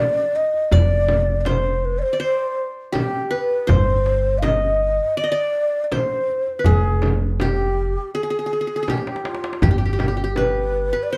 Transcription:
0.00 0.29 C5 medium
0.00 0.37 D5 loud
0.00 0.71 D5 medium
0.35 0.74 D#5 medium
0.35 darbuka ka soft
0.54 darbuka ka soft
0.71 2.01 F1 medium
0.71 1.71 D5 medium
0.71 1.41 D5 loud
0.71 frame drum medium
0.71 darbuka dum medium
1.09 darbuka tek medium
1.09 frame drum medium
1.41 1.50 D5 medium
1.45 2.19 C5 medium
1.45 1.86 C5 medium
1.45 darbuka tek medium
1.45 frame drum medium
1.83 2.00 B4 medium
1.83 darbuka ka soft
1.99 2.21 C5 loud
1.99 2.03 D5 medium
2.13 3.11 D5 medium
2.19 3.25 C5 medium
2.19 2.65 C5 loud
2.19 darbuka ka soft
2.92 4.18 G4 medium
2.92 3.30 G4 medium
2.92 darbuka tek medium
2.92 frame drum medium
3.31 3.73 B4 medium
3.31 darbuka ka soft
3.51 darbuka ka soft
3.67 4.98 G1 medium
3.67 4.73 C5 medium
3.67 frame drum medium
3.67 darbuka dum medium
3.71 4.40 C5 loud
4.06 darbuka tek medium
4.38 4.45 F5 medium
4.42 5.23 D#5 medium
4.42 5.18 D#5 medium
4.42 darbuka tek medium
4.42 frame drum medium
4.80 darbuka ka soft
5.17 5.30 D5 medium
5.17 5.84 D5 loud
5.17 darbuka ka soft
5.24 5.38 D#5 medium
5.32 6.30 D5 medium
5.84 5.95 D5 medium
5.92 6.65 C5 medium
5.92 6.61 C5 loud
5.92 darbuka tek medium
5.92 frame drum medium
6.28 darbuka ka soft
6.47 darbuka ka soft
6.59 7.69 B4 medium
6.59 6.69 B4 medium
6.64 7.95 F1 medium
6.64 7.47 G#4 medium
6.64 7.14 G#4 medium
6.64 darbuka dum medium
6.64 frame drum medium
7.02 darbuka tek medium
7.02 frame drum medium
7.40 8.11 G4 medium
7.40 8.21 G4 medium
7.40 darbuka tek medium
7.40 frame drum medium
7.58 darbuka ka soft
8.14 8.23 G#4 medium
8.14 8.90 G#4 medium
8.14 darbuka ka soft
8.23 8.30 G#4 soft
8.30 8.38 G#4 medium
8.39 8.46 G#4 soft
8.46 8.52 G#4 soft
8.53 8.60 G#4 soft
8.61 8.67 G#4 soft
8.67 8.75 G#4 soft
8.76 8.82 G#4 medium
8.83 8.96 G#4 medium
8.88 9.25 G4 medium
8.88 9.62 G4 medium
8.88 darbuka tek medium
8.88 frame drum medium
8.98 darbuka ka medium
9.07 darbuka tek medium
9.16 darbuka ka medium
9.25 9.65 F4 medium
9.25 darbuka tek medium
9.35 darbuka ka medium
9.44 darbuka tek medium
9.53 darbuka ka medium
9.62 10.91 G1 medium
9.62 9.70 G4 medium
9.62 10.37 G4 medium
9.62 frame drum medium
9.62 darbuka dum medium
9.71 9.78 G4 soft
9.78 9.85 G4 medium
9.85 9.92 G4 soft
9.93 9.99 G4 soft
9.99 10.08 G4 soft
9.99 darbuka tek medium
9.99 frame drum medium
10.08 10.16 G4 soft
10.17 10.23 G4 soft
10.24 11.17 G4 medium
10.36 11.04 B4 medium
10.36 10.92 B4 medium
10.36 darbuka tek medium
10.36 frame drum medium
10.73 darbuka ka soft
10.93 11.17 B4 medium
11.03 11.12 D5 medium
11.10 11.17 C5 medium
11.10 darbuka ka soft

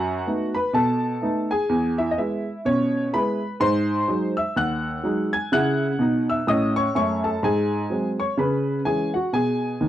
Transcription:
0.00 0.19 F#2 medium
0.00 0.52 F#4 medium
0.00 0.44 F#5 loud
0.27 0.53 A3 soft
0.27 0.53 B3 soft
0.27 0.54 D#4 soft
0.55 0.74 B4 medium
0.55 0.71 B5 medium
0.73 1.14 B2 medium
0.73 1.47 A4 medium
0.73 1.39 A5 medium
1.22 1.48 A3 medium
1.22 1.48 B3 soft
1.22 1.49 D#4 medium
1.51 1.96 G#4 medium
1.51 1.91 G#5 medium
1.69 2.10 E2 medium
1.98 2.12 E4 medium
1.98 2.10 E5 medium
2.11 2.17 D#5 medium
2.18 2.44 G#3 soft
2.18 2.44 B3 soft
2.18 2.63 E4 medium
2.18 2.59 E5 medium
2.65 3.06 B2 medium
2.65 3.11 C#4 medium
2.65 3.06 C#5 loud
3.13 3.39 G#3 medium
3.13 3.40 B3 medium
3.13 3.40 E4 medium
3.13 3.59 B4 medium
3.13 3.54 B5 medium
3.60 4.01 G#2 medium
3.60 4.33 C5 medium
3.60 4.25 C6 loud
4.08 4.34 F#3 medium
4.08 4.35 G#3 soft
4.08 4.35 D#4 medium
4.37 4.55 E5 medium
4.37 4.53 E6 medium
4.56 4.97 D#2 medium
4.56 5.29 F#5 medium
4.56 5.21 F#6 medium
5.03 5.30 F#3 soft
5.03 5.30 G#3 medium
5.03 5.31 D#4 soft
5.33 5.51 G#5 medium
5.33 5.49 G#6 medium
5.52 5.90 C#3 medium
5.52 5.91 E4 medium
5.52 6.25 F#5 medium
5.52 6.17 F#6 loud
5.99 6.37 B2 medium
5.99 6.38 D#4 medium
6.30 6.47 E5 medium
6.30 6.45 E6 medium
6.47 6.85 A2 medium
6.47 6.86 C#4 medium
6.47 6.74 D#5 medium
6.47 6.72 D#6 medium
6.76 6.94 C#5 medium
6.76 6.92 C#6 loud
6.95 7.33 F#2 medium
6.95 7.34 A3 medium
6.95 7.22 C#5 medium
6.95 7.19 C#6 loud
7.24 7.42 A4 medium
7.24 7.40 A5 medium
7.43 7.83 G#2 medium
7.43 8.15 G#4 medium
7.43 8.08 G#5 medium
7.90 8.16 F#3 soft
7.90 8.17 G#3 soft
7.90 8.17 C4 soft
8.20 8.37 C#5 medium
8.20 8.35 C#6 medium
8.37 8.78 C#3 medium
8.37 8.83 B4 medium
8.37 8.79 B5 medium
8.85 9.12 E3 soft
8.85 9.11 G#3 soft
8.85 9.12 C#4 soft
8.85 9.12 G#4 medium
8.85 9.09 G#5 medium
9.14 9.32 F#4 medium
9.14 9.30 F#5 medium
9.33 9.73 B2 medium
9.33 9.88 G#4 medium
9.33 9.88 G#5 medium
9.80 9.88 D#2 medium
9.80 9.88 D#3 medium

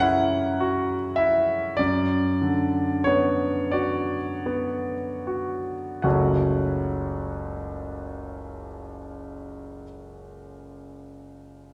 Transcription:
0.00 1.75 F#2 medium
0.00 1.81 C#3 soft
0.00 0.36 C#4 soft
0.00 0.94 E4 soft
0.00 1.80 A#4 medium
0.00 1.17 F#5 medium
0.60 1.54 F#4 soft
1.16 1.78 E4 soft
1.16 1.77 E5 medium
1.77 6.01 F#2 soft
1.77 3.05 D5 medium
2.42 3.46 D3 soft
3.04 4.16 B3 soft
3.04 3.72 C#5 medium
3.71 4.93 F#4 soft
3.71 6.04 D5 medium
4.46 5.75 B3 soft
5.27 6.03 F#4 soft
6.02 9.83 F#1 soft
6.02 9.83 C#2 soft
6.02 9.83 F#3 soft
6.02 9.83 A3 soft
6.02 9.83 C#4 soft
6.02 9.84 F#4 soft
6.02 9.81 F#5 soft

